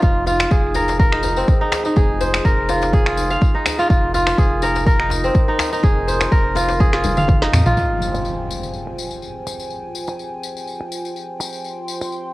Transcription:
0.00 0.46 F1 loud
0.00 1.12 D#4 medium
0.00 7.73 D#4 medium
0.00 7.73 F4 medium
0.00 0.26 F4 medium
0.00 0.42 G#4 loud
0.00 3.89 G#4 medium
0.00 0.43 F5 loud
0.00 kick loud
0.00 tambourine soft
0.00 djembe tone medium
0.26 1.78 F4 loud
0.26 tambourine medium
0.26 djembe tone medium
0.40 finger snap medium
0.40 tambourine medium
0.40 djembe slap medium
0.51 1.43 F1 medium
0.51 1.88 G#4 medium
0.51 kick loud
0.51 tambourine soft
0.51 djembe tone loud
0.74 0.99 A#4 medium
0.74 tambourine medium
0.74 djembe slap medium
0.74 djembe tone medium
0.88 tambourine medium
0.88 djembe slap medium
0.99 2.27 A#4 loud
0.99 kick loud
0.99 tambourine soft
0.99 djembe tone medium
1.12 1.61 D#4 medium
1.12 finger snap medium
1.23 tambourine medium
1.23 djembe tone medium
1.36 3.17 C4 medium
1.36 tambourine medium
1.48 kick loud
1.48 tambourine soft
1.48 djembe tone medium
1.61 1.85 D#4 medium
1.72 finger snap medium
1.72 tambourine medium
1.72 djembe slap loud
1.72 djembe tone medium
1.85 3.48 D#4 medium
1.85 tambourine soft
1.96 2.40 F1 loud
1.96 2.93 G#4 loud
1.96 kick loud
1.96 tambourine soft
1.96 djembe tone medium
2.21 3.39 C5 medium
2.21 tambourine medium
2.21 djembe tone medium
2.34 finger snap medium
2.34 tambourine soft
2.34 djembe slap medium
2.45 3.37 F1 medium
2.45 3.72 A#4 loud
2.45 kick loud
2.45 tambourine soft
2.45 djembe tone medium
2.69 3.06 F4 medium
2.69 tambourine medium
2.69 djembe slap medium
2.69 djembe tone medium
2.82 tambourine soft
2.82 djembe slap medium
2.93 4.30 G#4 loud
2.93 kick loud
2.93 tambourine soft
2.93 djembe tone medium
3.06 3.78 F4 medium
3.06 finger snap medium
3.17 tambourine medium
3.17 djembe tone medium
3.30 4.30 F5 loud
3.30 tambourine soft
3.41 kick loud
3.41 tambourine soft
3.41 djembe tone medium
3.54 4.99 D#4 medium
3.66 finger snap medium
3.66 tambourine medium
3.66 djembe tone medium
3.79 3.89 F4 loud
3.79 tambourine soft
3.90 4.33 F1 loud
3.90 7.76 A#4 medium
3.90 kick loud
3.90 tambourine soft
3.90 djembe tone medium
4.14 5.66 F4 loud
4.14 tambourine medium
4.14 djembe tone medium
4.27 finger snap medium
4.27 tambourine soft
4.27 djembe slap medium
4.38 5.30 F1 medium
4.38 5.75 G#4 loud
4.38 kick loud
4.38 tambourine soft
4.38 djembe tone medium
4.62 4.86 A#4 medium
4.62 tambourine medium
4.62 djembe slap medium
4.62 djembe tone medium
4.75 tambourine soft
4.75 djembe slap medium
4.86 6.14 A#4 loud
4.86 kick loud
4.86 tambourine soft
4.86 djembe tone medium
5.00 5.48 D#4 medium
5.00 finger snap medium
5.10 tambourine medium
5.10 djembe tone medium
5.24 7.04 C4 medium
5.24 tambourine soft
5.34 kick loud
5.34 tambourine soft
5.34 djembe tone medium
5.48 5.72 D#4 loud
5.59 finger snap medium
5.59 tambourine medium
5.59 djembe slap loud
5.59 djembe tone medium
5.72 7.34 D#4 medium
5.72 tambourine medium
5.83 6.27 F1 loud
5.83 6.80 G#4 loud
5.83 kick loud
5.83 tambourine soft
5.83 djembe tone medium
6.07 7.26 C5 medium
6.07 tambourine medium
6.07 djembe tone medium
6.20 finger snap medium
6.20 tambourine medium
6.20 djembe slap medium
6.31 7.04 F1 medium
6.31 7.59 A#4 loud
6.31 kick loud
6.31 tambourine soft
6.31 djembe tone medium
6.55 6.93 F4 medium
6.55 tambourine medium
6.55 djembe slap medium
6.55 djembe tone medium
6.68 tambourine medium
6.68 djembe slap medium
6.80 8.16 G#4 loud
6.80 kick loud
6.80 high tom medium
6.80 tambourine soft
6.80 djembe tone medium
6.93 7.66 F4 medium
6.93 finger snap medium
6.93 snare medium
7.04 7.48 F1 loud
7.04 high tom medium
7.04 tambourine medium
7.04 djembe tone medium
7.17 8.17 F5 loud
7.17 mid tom medium
7.17 tambourine medium
7.28 kick loud
7.28 mid tom medium
7.28 tambourine soft
7.28 djembe tone medium
7.42 9.04 D#4 medium
7.42 snare medium
7.53 7.62 F2 medium
7.53 finger snap medium
7.53 mid tom loud
7.53 tambourine medium
7.53 djembe tone medium
7.66 7.74 A#1 medium
7.66 9.17 F4 loud
7.66 mid tom medium
7.66 tambourine medium
7.77 12.34 F4 medium
7.77 12.34 C5 medium
7.77 12.34 G5 medium
7.77 11.63 G#5 medium
7.77 tambourine soft
7.77 impact medium
8.02 tambourine medium
8.14 finger snap medium
8.14 tambourine medium
8.25 tambourine soft
8.51 tambourine medium
8.63 tambourine soft
8.73 tambourine soft
8.87 finger snap medium
8.98 tambourine medium
9.11 tambourine soft
9.22 tambourine soft
9.47 finger snap medium
9.47 tambourine medium
9.59 tambourine soft
9.70 tambourine soft
9.95 tambourine medium
10.07 finger snap medium
10.07 tambourine soft
10.19 tambourine soft
10.43 tambourine medium
10.57 tambourine soft
10.67 tambourine soft
10.81 finger snap medium
10.92 tambourine medium
11.05 tambourine soft
11.16 tambourine soft
11.40 finger snap medium
11.40 tambourine loud
11.53 tambourine medium
11.64 12.34 C6 medium
11.64 tambourine soft
11.88 tambourine medium
12.01 finger snap medium
12.01 tambourine medium
12.12 tambourine soft

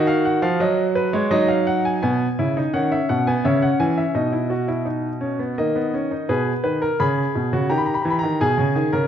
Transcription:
0.00 0.42 D#3 medium
0.00 1.28 F#4 medium
0.07 0.25 F5 medium
0.25 0.43 F#5 medium
0.42 0.60 F3 medium
0.42 0.60 F5 medium
0.60 1.12 F#3 medium
0.60 0.82 D#5 medium
0.95 1.13 B4 medium
1.13 1.31 G#3 medium
1.13 1.31 C#5 medium
1.31 2.00 F#3 medium
1.31 2.00 D#4 medium
1.31 1.49 D#5 medium
1.48 1.66 F5 medium
1.67 1.84 F#5 medium
1.85 2.01 G#5 medium
2.03 2.25 B2 medium
2.03 2.25 B3 medium
2.03 2.72 G#5 medium
2.39 2.61 C#3 medium
2.39 2.56 E4 medium
2.57 2.74 D#4 medium
2.74 2.96 D#3 medium
2.74 3.25 C#4 medium
2.74 2.91 F#5 medium
2.92 3.09 E5 medium
3.09 3.31 B2 medium
3.09 3.26 F#5 medium
3.27 3.44 B3 medium
3.27 3.44 G#5 medium
3.45 3.67 C#3 medium
3.45 4.13 C#4 medium
3.45 3.62 E5 medium
3.62 3.79 F#5 medium
3.80 4.02 E3 medium
3.80 3.97 G#5 medium
3.98 4.15 E5 medium
4.15 5.54 B2 medium
4.15 4.32 D#4 medium
4.15 5.54 D#5 medium
4.32 4.50 E4 soft
4.50 4.68 F#4 medium
4.68 4.86 E4 medium
4.85 5.08 D#4 soft
5.21 5.39 C#4 soft
5.39 5.57 B3 soft
5.58 6.27 D#3 soft
5.58 5.75 A#3 medium
5.58 6.27 D#5 medium
5.76 5.93 B3 soft
5.94 6.11 C#4 medium
6.11 6.29 D#4 soft
6.29 6.51 B2 medium
6.29 6.51 G#4 medium
6.29 6.62 B4 medium
6.64 6.86 D#3 medium
6.64 6.81 B4 medium
6.82 6.99 A#4 medium
7.00 7.22 C#3 medium
7.00 7.51 G#4 medium
7.00 7.68 B5 medium
7.35 7.52 B2 medium
7.53 7.70 C#3 medium
7.53 7.70 F#4 medium
7.70 7.92 D#3 medium
7.70 8.38 G4 medium
7.70 7.78 A#5 medium
7.78 7.86 B5 medium
7.86 7.94 A#5 medium
7.94 8.02 B5 medium
8.02 8.22 E3 medium
8.02 8.10 A#5 soft
8.10 8.18 B5 medium
8.19 8.40 A#5 medium
8.23 8.40 D#3 medium
8.41 8.58 B2 medium
8.41 8.92 G#4 medium
8.41 9.07 G#5 medium
8.58 8.75 C#3 medium
8.75 8.92 D#3 medium
8.93 9.07 C#3 medium
8.93 9.07 A#4 medium

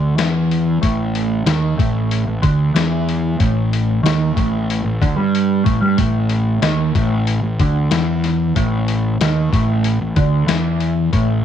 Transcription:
0.00 0.16 D2 medium
0.00 0.17 D3 loud
0.17 0.77 E2 medium
0.17 0.80 E3 loud
0.17 snare loud
0.17 open hi-hat medium
0.51 open hi-hat soft
0.82 1.43 A1 medium
0.82 1.45 A2 loud
0.82 kick loud
0.82 open hi-hat medium
1.15 open hi-hat medium
1.46 1.76 D#2 medium
1.46 1.77 D#3 loud
1.46 snare loud
1.46 open hi-hat medium
1.78 2.24 A1 medium
1.78 2.25 A2 medium
1.78 kick loud
1.78 open hi-hat medium
2.11 open hi-hat medium
2.26 2.41 A1 medium
2.26 2.42 A2 medium
2.42 2.73 D2 loud
2.42 2.74 D3 loud
2.42 kick loud
2.42 open hi-hat medium
2.74 3.36 E2 medium
2.74 3.38 E3 loud
2.74 snare loud
2.74 open hi-hat medium
3.09 open hi-hat medium
3.39 4.01 A1 medium
3.39 4.03 A2 medium
3.39 kick loud
3.39 open hi-hat medium
3.73 open hi-hat medium
4.03 4.33 D#2 medium
4.03 4.35 D#3 loud
4.03 snare loud
4.03 open hi-hat medium
4.35 4.82 A1 medium
4.35 4.83 A2 medium
4.35 kick medium
4.35 open hi-hat soft
4.70 open hi-hat medium
4.83 4.99 A1 medium
4.83 5.01 A2 medium
5.02 5.16 D2 medium
5.02 5.16 D3 loud
5.02 kick loud
5.02 open hi-hat medium
5.16 5.61 G2 medium
5.16 5.64 G3 loud
5.35 open hi-hat medium
5.64 5.81 A1 medium
5.64 5.80 A2 medium
5.64 kick medium
5.64 open hi-hat soft
5.81 5.97 G2 medium
5.81 5.96 G3 loud
5.97 6.58 A1 medium
5.97 6.61 A2 medium
5.97 kick medium
5.97 open hi-hat medium
6.30 open hi-hat medium
6.62 6.92 D#2 medium
6.62 6.93 D#3 loud
6.62 snare loud
6.62 open hi-hat medium
6.95 7.39 A1 medium
6.95 7.42 A2 medium
6.95 kick loud
6.95 open hi-hat medium
7.27 open hi-hat medium
7.41 7.57 A1 medium
7.41 7.59 A2 medium
7.59 7.89 D2 medium
7.59 7.92 D3 medium
7.59 kick loud
7.59 open hi-hat medium
7.91 8.51 E2 medium
7.91 8.55 E3 loud
7.91 snare loud
7.91 open hi-hat medium
8.24 snare soft
8.24 open hi-hat medium
8.56 9.16 A1 medium
8.56 9.19 A2 loud
8.56 kick loud
8.56 open hi-hat medium
8.88 open hi-hat medium
9.20 9.49 D#2 medium
9.20 9.51 D#3 medium
9.20 snare loud
9.20 open hi-hat medium
9.52 9.97 A1 medium
9.52 9.99 A2 loud
9.52 kick loud
9.52 open hi-hat medium
9.84 open hi-hat medium
10.01 10.15 A1 medium
10.01 10.16 A2 medium
10.16 10.46 D2 medium
10.16 10.46 D3 loud
10.16 kick loud
10.16 open hi-hat medium
10.47 11.09 E2 medium
10.47 11.11 E3 loud
10.47 snare loud
10.47 open hi-hat medium
10.80 open hi-hat medium
11.12 11.45 A1 medium
11.12 11.45 A2 loud
11.12 kick loud
11.12 open hi-hat medium

